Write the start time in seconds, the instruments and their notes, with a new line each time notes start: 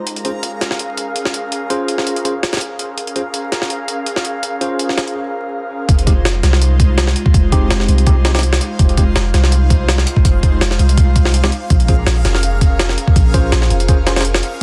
Already playing: synth texture A#5
0.06 analog synth pad C#4 G#4 A#4 F5, closed hi-hat
0.16 closed hi-hat
0.25 tine electric piano C#4 F4 G#4 C5, closed hi-hat
0.43 closed hi-hat
0.61 snare, closed hi-hat
0.71 snare
0.79 closed hi-hat
0.97 closed hi-hat
1.16 closed hi-hat
1.25 snare
1.34 closed hi-hat
1.52 closed hi-hat
1.70 tine electric piano C#4 F4 G#4 C5, closed hi-hat
1.88 closed hi-hat
1.98 snare
2.07 closed hi-hat
2.16 closed hi-hat
2.25 tine electric piano C#4 F4 G#4 C5, closed hi-hat
2.43 snare, closed hi-hat
2.53 snare, closed hi-hat
2.57 snare, closed hi-hat
2.61 closed hi-hat
2.79 closed hi-hat
2.98 analog synth pad C#4 G#4 A#4 F5, closed hi-hat
3.07 closed hi-hat
3.16 tine electric piano C#4 F4 G#4 C5, closed hi-hat
3.34 closed hi-hat
3.52 snare, closed hi-hat
3.62 snare
3.70 closed hi-hat
3.88 closed hi-hat
4.06 closed hi-hat
4.16 snare
4.25 closed hi-hat
4.43 closed hi-hat
4.61 tine electric piano C#4 F4 G#4 C5, closed hi-hat
4.79 closed hi-hat
4.89 snare
4.98 snare, closed hi-hat
5.08 closed hi-hat
5.88 808-style bass F1, analog synth pad G#3 D#4 F4 C5, synth texture F5, kick, closed hi-hat
5.99 closed hi-hat
6.07 tine electric piano G#3 C4 D#4 G4, kick, closed hi-hat
6.25 808-style bass F1, snare, closed hi-hat
6.43 808-style bass C2, analog synth pad G#3 D#4 F4 C5, snare, closed hi-hat
6.53 snare
6.62 closed hi-hat
6.80 kick, closed hi-hat
6.98 snare, closed hi-hat
7.07 snare
7.16 closed hi-hat
7.26 kick
7.34 808-style bass F1, analog synth pad G#3 D#4 F4 C5, kick, closed hi-hat
7.52 tine electric piano G#3 C4 D#4 G4, kick, closed hi-hat
7.71 808-style bass F1, snare, closed hi-hat
7.80 snare
7.88 808-style bass C2, analog synth pad G#3 D#4 F4 C5, closed hi-hat
7.98 closed hi-hat
8.06 tine electric piano G#3 C4 D#4 G4, kick, closed hi-hat
8.25 tine electric piano G#3 C4 D#4 G4, snare, closed hi-hat
8.35 tine electric piano G#3 C4 D#4 G4, snare, closed hi-hat
8.39 snare, closed hi-hat
8.43 closed hi-hat
8.53 snare
8.61 closed hi-hat
8.79 808-style bass F1, analog synth pad G#3 D#4 F4 C5, kick, closed hi-hat
8.89 closed hi-hat
8.97 tine electric piano G#3 C4 D#4 G4, kick, closed hi-hat
9.16 808-style bass F1, snare, closed hi-hat
9.34 808-style bass C2, analog synth pad G#3 D#4 F4 C5, snare, closed hi-hat
9.44 snare
9.52 closed hi-hat
9.70 kick, closed hi-hat
9.88 snare, closed hi-hat
9.98 snare
10.07 closed hi-hat
10.16 kick
10.25 808-style bass F1, analog synth pad G#3 D#4 F4 C5, kick, closed hi-hat
10.43 kick, closed hi-hat
10.61 808-style bass F1, snare, closed hi-hat
10.71 snare
10.79 808-style bass C2, analog synth pad G#3 D#4 F4 C5, closed hi-hat
10.89 closed hi-hat
10.98 kick, closed hi-hat
11.16 kick, closed hi-hat
11.25 analog synth pad G#3 D#4 F4 C5, snare
11.34 closed hi-hat
11.44 tine electric piano G#3 C4 D#4 G4, snare
11.52 closed hi-hat
11.70 808-style bass A#1, analog synth pad C#4 G#4 A#4 F5, kick, closed hi-hat
11.80 closed hi-hat
11.88 tine electric piano C#4 F4 G#4 C5, kick, closed hi-hat
12.07 808-style bass A#1, snare, closed hi-hat
12.25 808-style bass F1, analog synth pad C#4 G#4 A#4 F5, snare, closed hi-hat
12.35 snare
12.43 closed hi-hat
12.61 kick, closed hi-hat
12.79 snare, closed hi-hat
12.89 snare
12.98 closed hi-hat
13.08 kick
13.16 808-style bass A#1, analog synth pad C#4 G#4 A#4 F5, kick, closed hi-hat
13.34 tine electric piano C#4 F4 G#4 C5, kick, closed hi-hat
13.52 808-style bass A#1, snare, closed hi-hat
13.62 snare
13.70 808-style bass F1, analog synth pad C#4 G#4 A#4 F5, closed hi-hat
13.80 closed hi-hat
13.88 tine electric piano C#4 F4 G#4 C5, kick, closed hi-hat
14.07 tine electric piano C#4 F4 G#4 C5, snare, closed hi-hat
14.16 tine electric piano C#4 F4 G#4 C5, snare, closed hi-hat
14.21 snare, closed hi-hat
14.25 closed hi-hat
14.35 snare
14.43 closed hi-hat